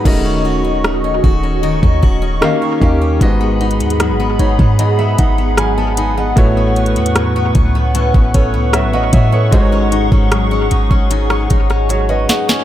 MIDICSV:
0, 0, Header, 1, 6, 480
1, 0, Start_track
1, 0, Tempo, 789474
1, 33, Time_signature, 4, 2, 24, 8
1, 7686, End_track
2, 0, Start_track
2, 0, Title_t, "Analog synth pad"
2, 0, Program_c, 0, 89
2, 31, Note_on_c, 0, 66, 83
2, 31, Note_on_c, 0, 75, 81
2, 31, Note_on_c, 0, 85, 94
2, 1457, Note_off_c, 0, 66, 0
2, 1470, Note_on_c, 0, 67, 74
2, 1933, Note_off_c, 0, 75, 0
2, 1933, Note_off_c, 0, 85, 0
2, 1947, Note_off_c, 0, 67, 0
2, 1951, Note_on_c, 0, 78, 79
2, 1952, Note_on_c, 0, 83, 95
2, 1953, Note_on_c, 0, 68, 83
2, 3853, Note_off_c, 0, 83, 0
2, 3854, Note_off_c, 0, 68, 0
2, 3870, Note_on_c, 0, 85, 95
2, 3872, Note_on_c, 0, 71, 89
2, 5773, Note_off_c, 0, 71, 0
2, 5794, Note_on_c, 0, 68, 87
2, 7686, Note_off_c, 0, 68, 0
2, 7686, Note_off_c, 0, 78, 0
2, 7686, Note_off_c, 0, 85, 0
2, 7686, End_track
3, 0, Start_track
3, 0, Title_t, "Grand piano"
3, 0, Program_c, 1, 0
3, 0, Control_c, 1, 64, 127
3, 0, Note_on_c, 1, 68, 63
3, 26, Note_on_c, 1, 51, 84
3, 31, Note_on_c, 1, 57, 76
3, 35, Note_on_c, 1, 61, 73
3, 39, Note_on_c, 1, 66, 72
3, 41, Control_c, 1, 64, 0
3, 43, Note_on_c, 1, 75, 88
3, 141, Note_off_c, 1, 68, 0
3, 156, Control_c, 1, 64, 127
3, 742, Note_off_c, 1, 51, 0
3, 744, Note_off_c, 1, 57, 0
3, 747, Note_off_c, 1, 61, 0
3, 749, Note_off_c, 1, 66, 0
3, 751, Note_off_c, 1, 75, 0
3, 1467, Note_on_c, 1, 51, 92
3, 1472, Note_on_c, 1, 58, 86
3, 1475, Note_on_c, 1, 61, 82
3, 1479, Note_on_c, 1, 67, 81
3, 1482, Control_c, 1, 64, 0
3, 1484, Note_on_c, 1, 77, 101
3, 1579, Control_c, 1, 64, 127
3, 1662, Note_off_c, 1, 51, 0
3, 1664, Note_off_c, 1, 58, 0
3, 1666, Note_off_c, 1, 61, 0
3, 1668, Note_off_c, 1, 67, 0
3, 1670, Note_off_c, 1, 77, 0
3, 1704, Note_on_c, 1, 51, 81
3, 1708, Note_on_c, 1, 58, 72
3, 1712, Note_on_c, 1, 61, 75
3, 1717, Note_on_c, 1, 67, 74
3, 1721, Note_on_c, 1, 77, 95
3, 1887, Note_off_c, 1, 51, 0
3, 1889, Note_off_c, 1, 58, 0
3, 1891, Note_off_c, 1, 61, 0
3, 1893, Note_off_c, 1, 67, 0
3, 1895, Note_off_c, 1, 77, 0
3, 1945, Note_on_c, 1, 44, 77
3, 1949, Note_on_c, 1, 56, 72
3, 1952, Note_on_c, 1, 59, 73
3, 1957, Note_on_c, 1, 66, 76
3, 1961, Control_c, 1, 64, 0
3, 1962, Note_on_c, 1, 75, 92
3, 2080, Control_c, 1, 64, 127
3, 2662, Note_off_c, 1, 44, 0
3, 2664, Note_off_c, 1, 56, 0
3, 2665, Note_off_c, 1, 59, 0
3, 2667, Note_off_c, 1, 66, 0
3, 2670, Note_off_c, 1, 75, 0
3, 2671, Note_on_c, 1, 73, 68
3, 2895, Note_off_c, 1, 73, 0
3, 2913, Note_on_c, 1, 75, 66
3, 3025, Note_off_c, 1, 75, 0
3, 3031, Note_on_c, 1, 76, 67
3, 3143, Note_off_c, 1, 76, 0
3, 3153, Note_on_c, 1, 78, 69
3, 3376, Note_off_c, 1, 78, 0
3, 3394, Note_on_c, 1, 80, 75
3, 3395, Note_on_c, 1, 83, 64
3, 3513, Note_on_c, 1, 81, 70
3, 3622, Note_off_c, 1, 83, 0
3, 3623, Note_off_c, 1, 80, 0
3, 3624, Note_off_c, 1, 81, 0
3, 3634, Note_on_c, 1, 83, 68
3, 3635, Note_on_c, 1, 80, 74
3, 3748, Note_off_c, 1, 80, 0
3, 3755, Note_on_c, 1, 78, 66
3, 3759, Note_on_c, 1, 75, 55
3, 3857, Note_off_c, 1, 83, 0
3, 3865, Note_on_c, 1, 45, 83
3, 3869, Note_on_c, 1, 57, 76
3, 3873, Note_on_c, 1, 59, 75
3, 3878, Note_on_c, 1, 66, 78
3, 3881, Control_c, 1, 64, 0
3, 3882, Note_on_c, 1, 73, 90
3, 3982, Note_off_c, 1, 78, 0
3, 3984, Note_off_c, 1, 75, 0
3, 4005, Control_c, 1, 64, 127
3, 4582, Note_off_c, 1, 45, 0
3, 4583, Note_off_c, 1, 57, 0
3, 4586, Note_off_c, 1, 59, 0
3, 4588, Note_off_c, 1, 66, 0
3, 4590, Note_off_c, 1, 73, 0
3, 5074, Note_on_c, 1, 73, 64
3, 5076, Note_on_c, 1, 69, 56
3, 5301, Note_off_c, 1, 73, 0
3, 5303, Note_off_c, 1, 69, 0
3, 5313, Note_on_c, 1, 76, 71
3, 5316, Note_on_c, 1, 73, 58
3, 5427, Note_off_c, 1, 76, 0
3, 5429, Note_off_c, 1, 73, 0
3, 5433, Note_on_c, 1, 78, 74
3, 5436, Note_on_c, 1, 75, 65
3, 5547, Note_off_c, 1, 78, 0
3, 5549, Note_off_c, 1, 75, 0
3, 5552, Note_on_c, 1, 76, 70
3, 5557, Note_on_c, 1, 73, 58
3, 5663, Note_off_c, 1, 73, 0
3, 5667, Note_off_c, 1, 76, 0
3, 5672, Note_on_c, 1, 73, 67
3, 5677, Note_on_c, 1, 69, 52
3, 5783, Note_on_c, 1, 44, 86
3, 5787, Note_on_c, 1, 56, 74
3, 5792, Note_on_c, 1, 63, 75
3, 5795, Note_on_c, 1, 66, 80
3, 5799, Note_on_c, 1, 72, 73
3, 5800, Control_c, 1, 64, 0
3, 5830, Note_off_c, 1, 73, 0
3, 5835, Note_off_c, 1, 72, 0
3, 5839, Note_on_c, 1, 73, 91
3, 5903, Note_off_c, 1, 69, 0
3, 5916, Control_c, 1, 64, 127
3, 6500, Note_off_c, 1, 44, 0
3, 6502, Note_off_c, 1, 56, 0
3, 6505, Note_off_c, 1, 63, 0
3, 6506, Note_off_c, 1, 66, 0
3, 6529, Note_off_c, 1, 73, 0
3, 7235, Note_on_c, 1, 73, 69
3, 7348, Note_off_c, 1, 73, 0
3, 7355, Note_on_c, 1, 75, 76
3, 7360, Note_on_c, 1, 71, 63
3, 7468, Note_off_c, 1, 75, 0
3, 7471, Note_off_c, 1, 71, 0
3, 7473, Note_on_c, 1, 78, 69
3, 7477, Note_on_c, 1, 75, 59
3, 7587, Note_off_c, 1, 78, 0
3, 7589, Note_off_c, 1, 75, 0
3, 7594, Note_on_c, 1, 80, 66
3, 7686, Note_off_c, 1, 80, 0
3, 7686, End_track
4, 0, Start_track
4, 0, Title_t, "Steel-string acoustic guitar"
4, 0, Program_c, 2, 25
4, 0, Note_on_c, 2, 44, 78
4, 0, Note_on_c, 2, 59, 58
4, 0, Note_on_c, 2, 63, 65
4, 34, Note_on_c, 2, 51, 85
4, 38, Note_on_c, 2, 66, 68
4, 82, Note_off_c, 2, 44, 0
4, 82, Note_off_c, 2, 59, 0
4, 151, Note_off_c, 2, 63, 0
4, 153, Note_on_c, 2, 61, 56
4, 266, Note_off_c, 2, 66, 0
4, 273, Note_on_c, 2, 66, 62
4, 390, Note_off_c, 2, 61, 0
4, 392, Note_on_c, 2, 61, 56
4, 513, Note_on_c, 2, 57, 60
4, 630, Note_off_c, 2, 61, 0
4, 633, Note_on_c, 2, 61, 56
4, 745, Note_off_c, 2, 66, 0
4, 753, Note_on_c, 2, 66, 66
4, 864, Note_off_c, 2, 61, 0
4, 871, Note_on_c, 2, 61, 57
4, 986, Note_off_c, 2, 66, 0
4, 988, Note_off_c, 2, 51, 0
4, 991, Note_on_c, 2, 51, 77
4, 994, Note_on_c, 2, 66, 66
4, 1105, Note_off_c, 2, 61, 0
4, 1112, Note_on_c, 2, 61, 60
4, 1224, Note_off_c, 2, 66, 0
4, 1231, Note_on_c, 2, 66, 64
4, 1342, Note_off_c, 2, 61, 0
4, 1349, Note_on_c, 2, 61, 60
4, 1468, Note_off_c, 2, 51, 0
4, 1471, Note_on_c, 2, 51, 79
4, 1519, Note_off_c, 2, 61, 0
4, 1520, Note_off_c, 2, 66, 0
4, 1521, Note_off_c, 2, 57, 0
4, 1592, Note_on_c, 2, 61, 59
4, 1714, Note_on_c, 2, 67, 63
4, 1826, Note_off_c, 2, 61, 0
4, 1833, Note_on_c, 2, 61, 58
4, 1953, Note_off_c, 2, 61, 0
4, 1953, Note_on_c, 2, 44, 80
4, 1957, Note_on_c, 2, 63, 69
4, 2001, Note_off_c, 2, 67, 0
4, 2071, Note_on_c, 2, 59, 58
4, 2185, Note_off_c, 2, 63, 0
4, 2192, Note_on_c, 2, 63, 68
4, 2308, Note_off_c, 2, 59, 0
4, 2310, Note_on_c, 2, 59, 56
4, 2428, Note_off_c, 2, 51, 0
4, 2430, Note_on_c, 2, 54, 62
4, 2549, Note_off_c, 2, 59, 0
4, 2551, Note_on_c, 2, 59, 60
4, 2664, Note_off_c, 2, 63, 0
4, 2671, Note_on_c, 2, 63, 68
4, 2789, Note_off_c, 2, 59, 0
4, 2792, Note_on_c, 2, 59, 58
4, 2904, Note_off_c, 2, 44, 0
4, 2908, Note_off_c, 2, 63, 0
4, 2912, Note_on_c, 2, 44, 79
4, 2916, Note_on_c, 2, 63, 66
4, 3030, Note_off_c, 2, 59, 0
4, 3032, Note_on_c, 2, 59, 61
4, 3144, Note_off_c, 2, 63, 0
4, 3151, Note_on_c, 2, 63, 68
4, 3270, Note_off_c, 2, 59, 0
4, 3272, Note_on_c, 2, 59, 61
4, 3390, Note_off_c, 2, 54, 0
4, 3392, Note_on_c, 2, 54, 61
4, 3510, Note_off_c, 2, 59, 0
4, 3512, Note_on_c, 2, 59, 59
4, 3627, Note_off_c, 2, 63, 0
4, 3634, Note_on_c, 2, 63, 68
4, 3752, Note_off_c, 2, 59, 0
4, 3755, Note_on_c, 2, 59, 61
4, 3871, Note_off_c, 2, 44, 0
4, 3873, Note_off_c, 2, 63, 0
4, 3874, Note_on_c, 2, 45, 89
4, 3877, Note_on_c, 2, 61, 70
4, 3992, Note_off_c, 2, 59, 0
4, 3995, Note_on_c, 2, 59, 59
4, 4110, Note_off_c, 2, 61, 0
4, 4113, Note_on_c, 2, 61, 65
4, 4226, Note_off_c, 2, 59, 0
4, 4233, Note_on_c, 2, 59, 59
4, 4352, Note_off_c, 2, 54, 0
4, 4354, Note_on_c, 2, 54, 61
4, 4467, Note_off_c, 2, 59, 0
4, 4474, Note_on_c, 2, 59, 63
4, 4590, Note_off_c, 2, 61, 0
4, 4592, Note_on_c, 2, 61, 66
4, 4706, Note_off_c, 2, 59, 0
4, 4713, Note_on_c, 2, 59, 60
4, 4823, Note_off_c, 2, 45, 0
4, 4831, Note_on_c, 2, 45, 79
4, 4832, Note_off_c, 2, 61, 0
4, 4834, Note_on_c, 2, 61, 69
4, 4944, Note_off_c, 2, 59, 0
4, 4951, Note_on_c, 2, 59, 63
4, 5069, Note_off_c, 2, 61, 0
4, 5071, Note_on_c, 2, 61, 70
4, 5184, Note_off_c, 2, 59, 0
4, 5191, Note_on_c, 2, 59, 59
4, 5309, Note_off_c, 2, 54, 0
4, 5311, Note_on_c, 2, 54, 61
4, 5424, Note_off_c, 2, 59, 0
4, 5431, Note_on_c, 2, 59, 61
4, 5548, Note_off_c, 2, 61, 0
4, 5551, Note_on_c, 2, 61, 65
4, 5662, Note_off_c, 2, 59, 0
4, 5669, Note_on_c, 2, 59, 58
4, 5787, Note_off_c, 2, 45, 0
4, 5790, Note_on_c, 2, 44, 88
4, 5791, Note_off_c, 2, 61, 0
4, 5794, Note_on_c, 2, 63, 73
4, 5839, Note_off_c, 2, 59, 0
4, 5912, Note_on_c, 2, 61, 61
4, 6030, Note_off_c, 2, 63, 0
4, 6032, Note_on_c, 2, 63, 67
4, 6150, Note_off_c, 2, 61, 0
4, 6152, Note_on_c, 2, 61, 59
4, 6269, Note_off_c, 2, 54, 0
4, 6271, Note_on_c, 2, 54, 62
4, 6388, Note_off_c, 2, 61, 0
4, 6391, Note_on_c, 2, 61, 62
4, 6508, Note_off_c, 2, 63, 0
4, 6510, Note_on_c, 2, 63, 70
4, 6629, Note_off_c, 2, 61, 0
4, 6631, Note_on_c, 2, 61, 61
4, 6744, Note_off_c, 2, 44, 0
4, 6751, Note_on_c, 2, 44, 79
4, 6752, Note_off_c, 2, 63, 0
4, 6755, Note_on_c, 2, 63, 70
4, 6868, Note_off_c, 2, 61, 0
4, 6871, Note_on_c, 2, 61, 63
4, 6989, Note_off_c, 2, 63, 0
4, 6991, Note_on_c, 2, 63, 67
4, 7109, Note_off_c, 2, 61, 0
4, 7111, Note_on_c, 2, 61, 61
4, 7223, Note_off_c, 2, 54, 0
4, 7231, Note_on_c, 2, 54, 63
4, 7348, Note_off_c, 2, 61, 0
4, 7350, Note_on_c, 2, 61, 63
4, 7469, Note_off_c, 2, 63, 0
4, 7471, Note_on_c, 2, 63, 64
4, 7589, Note_off_c, 2, 61, 0
4, 7591, Note_on_c, 2, 61, 62
4, 7686, Note_off_c, 2, 44, 0
4, 7686, Note_off_c, 2, 54, 0
4, 7686, Note_off_c, 2, 61, 0
4, 7686, Note_off_c, 2, 63, 0
4, 7686, End_track
5, 0, Start_track
5, 0, Title_t, "808-style bass"
5, 0, Program_c, 3, 38
5, 33, Note_on_c, 3, 27, 106
5, 729, Note_off_c, 3, 27, 0
5, 754, Note_on_c, 3, 27, 92
5, 1099, Note_off_c, 3, 27, 0
5, 1113, Note_on_c, 3, 39, 101
5, 1228, Note_off_c, 3, 39, 0
5, 1236, Note_on_c, 3, 27, 101
5, 1465, Note_off_c, 3, 27, 0
5, 1712, Note_on_c, 3, 39, 100
5, 1943, Note_off_c, 3, 39, 0
5, 1952, Note_on_c, 3, 32, 98
5, 2313, Note_on_c, 3, 39, 95
5, 2322, Note_off_c, 3, 32, 0
5, 2492, Note_on_c, 3, 32, 102
5, 2501, Note_off_c, 3, 39, 0
5, 2663, Note_off_c, 3, 32, 0
5, 2671, Note_on_c, 3, 32, 98
5, 2787, Note_off_c, 3, 32, 0
5, 2791, Note_on_c, 3, 44, 108
5, 3138, Note_off_c, 3, 44, 0
5, 3155, Note_on_c, 3, 32, 105
5, 3850, Note_off_c, 3, 32, 0
5, 3872, Note_on_c, 3, 33, 104
5, 4232, Note_on_c, 3, 40, 92
5, 4241, Note_off_c, 3, 33, 0
5, 4574, Note_off_c, 3, 40, 0
5, 4592, Note_on_c, 3, 37, 99
5, 4938, Note_off_c, 3, 37, 0
5, 4952, Note_on_c, 3, 33, 105
5, 5195, Note_on_c, 3, 37, 99
5, 5204, Note_off_c, 3, 33, 0
5, 5375, Note_on_c, 3, 33, 100
5, 5384, Note_off_c, 3, 37, 0
5, 5545, Note_off_c, 3, 33, 0
5, 5551, Note_on_c, 3, 45, 102
5, 5783, Note_off_c, 3, 45, 0
5, 5791, Note_on_c, 3, 32, 108
5, 6138, Note_off_c, 3, 32, 0
5, 6152, Note_on_c, 3, 32, 94
5, 6498, Note_off_c, 3, 32, 0
5, 6515, Note_on_c, 3, 32, 101
5, 6629, Note_off_c, 3, 32, 0
5, 6632, Note_on_c, 3, 32, 106
5, 6978, Note_off_c, 3, 32, 0
5, 6997, Note_on_c, 3, 32, 105
5, 7456, Note_off_c, 3, 32, 0
5, 7686, End_track
6, 0, Start_track
6, 0, Title_t, "Drums"
6, 33, Note_on_c, 9, 36, 110
6, 34, Note_on_c, 9, 49, 85
6, 94, Note_off_c, 9, 36, 0
6, 95, Note_off_c, 9, 49, 0
6, 513, Note_on_c, 9, 37, 102
6, 574, Note_off_c, 9, 37, 0
6, 754, Note_on_c, 9, 36, 86
6, 814, Note_off_c, 9, 36, 0
6, 1112, Note_on_c, 9, 36, 99
6, 1173, Note_off_c, 9, 36, 0
6, 1236, Note_on_c, 9, 36, 82
6, 1296, Note_off_c, 9, 36, 0
6, 1471, Note_on_c, 9, 37, 119
6, 1532, Note_off_c, 9, 37, 0
6, 1712, Note_on_c, 9, 36, 93
6, 1773, Note_off_c, 9, 36, 0
6, 1952, Note_on_c, 9, 36, 108
6, 1953, Note_on_c, 9, 42, 70
6, 2013, Note_off_c, 9, 36, 0
6, 2013, Note_off_c, 9, 42, 0
6, 2193, Note_on_c, 9, 42, 36
6, 2254, Note_off_c, 9, 42, 0
6, 2254, Note_on_c, 9, 42, 45
6, 2313, Note_off_c, 9, 42, 0
6, 2313, Note_on_c, 9, 42, 52
6, 2373, Note_off_c, 9, 42, 0
6, 2373, Note_on_c, 9, 42, 58
6, 2432, Note_off_c, 9, 42, 0
6, 2432, Note_on_c, 9, 37, 107
6, 2432, Note_on_c, 9, 42, 57
6, 2493, Note_off_c, 9, 37, 0
6, 2493, Note_off_c, 9, 42, 0
6, 2672, Note_on_c, 9, 42, 55
6, 2732, Note_off_c, 9, 42, 0
6, 2791, Note_on_c, 9, 36, 80
6, 2852, Note_off_c, 9, 36, 0
6, 2912, Note_on_c, 9, 42, 77
6, 2973, Note_off_c, 9, 42, 0
6, 3152, Note_on_c, 9, 42, 63
6, 3155, Note_on_c, 9, 36, 82
6, 3213, Note_off_c, 9, 42, 0
6, 3216, Note_off_c, 9, 36, 0
6, 3390, Note_on_c, 9, 37, 108
6, 3393, Note_on_c, 9, 42, 76
6, 3450, Note_off_c, 9, 37, 0
6, 3453, Note_off_c, 9, 42, 0
6, 3631, Note_on_c, 9, 42, 76
6, 3692, Note_off_c, 9, 42, 0
6, 3871, Note_on_c, 9, 36, 117
6, 3872, Note_on_c, 9, 42, 68
6, 3932, Note_off_c, 9, 36, 0
6, 3933, Note_off_c, 9, 42, 0
6, 4112, Note_on_c, 9, 42, 37
6, 4172, Note_off_c, 9, 42, 0
6, 4172, Note_on_c, 9, 42, 45
6, 4233, Note_off_c, 9, 42, 0
6, 4233, Note_on_c, 9, 42, 53
6, 4292, Note_off_c, 9, 42, 0
6, 4292, Note_on_c, 9, 42, 65
6, 4351, Note_off_c, 9, 42, 0
6, 4351, Note_on_c, 9, 37, 109
6, 4351, Note_on_c, 9, 42, 59
6, 4412, Note_off_c, 9, 37, 0
6, 4412, Note_off_c, 9, 42, 0
6, 4590, Note_on_c, 9, 42, 54
6, 4592, Note_on_c, 9, 36, 94
6, 4651, Note_off_c, 9, 42, 0
6, 4653, Note_off_c, 9, 36, 0
6, 4833, Note_on_c, 9, 42, 77
6, 4893, Note_off_c, 9, 42, 0
6, 4952, Note_on_c, 9, 36, 97
6, 5012, Note_off_c, 9, 36, 0
6, 5073, Note_on_c, 9, 42, 61
6, 5075, Note_on_c, 9, 36, 83
6, 5133, Note_off_c, 9, 42, 0
6, 5136, Note_off_c, 9, 36, 0
6, 5310, Note_on_c, 9, 37, 114
6, 5313, Note_on_c, 9, 42, 80
6, 5370, Note_off_c, 9, 37, 0
6, 5373, Note_off_c, 9, 42, 0
6, 5550, Note_on_c, 9, 42, 74
6, 5551, Note_on_c, 9, 36, 86
6, 5611, Note_off_c, 9, 42, 0
6, 5612, Note_off_c, 9, 36, 0
6, 5791, Note_on_c, 9, 42, 69
6, 5792, Note_on_c, 9, 36, 116
6, 5852, Note_off_c, 9, 36, 0
6, 5852, Note_off_c, 9, 42, 0
6, 6032, Note_on_c, 9, 42, 57
6, 6092, Note_off_c, 9, 42, 0
6, 6153, Note_on_c, 9, 36, 89
6, 6213, Note_off_c, 9, 36, 0
6, 6273, Note_on_c, 9, 37, 115
6, 6273, Note_on_c, 9, 42, 58
6, 6333, Note_off_c, 9, 37, 0
6, 6333, Note_off_c, 9, 42, 0
6, 6512, Note_on_c, 9, 42, 56
6, 6573, Note_off_c, 9, 42, 0
6, 6632, Note_on_c, 9, 36, 82
6, 6693, Note_off_c, 9, 36, 0
6, 6753, Note_on_c, 9, 42, 83
6, 6814, Note_off_c, 9, 42, 0
6, 6871, Note_on_c, 9, 37, 102
6, 6932, Note_off_c, 9, 37, 0
6, 6994, Note_on_c, 9, 42, 63
6, 6996, Note_on_c, 9, 36, 85
6, 7055, Note_off_c, 9, 42, 0
6, 7057, Note_off_c, 9, 36, 0
6, 7116, Note_on_c, 9, 37, 65
6, 7177, Note_off_c, 9, 37, 0
6, 7236, Note_on_c, 9, 42, 78
6, 7297, Note_off_c, 9, 42, 0
6, 7473, Note_on_c, 9, 42, 74
6, 7474, Note_on_c, 9, 38, 84
6, 7534, Note_off_c, 9, 42, 0
6, 7535, Note_off_c, 9, 38, 0
6, 7595, Note_on_c, 9, 38, 84
6, 7656, Note_off_c, 9, 38, 0
6, 7686, End_track
0, 0, End_of_file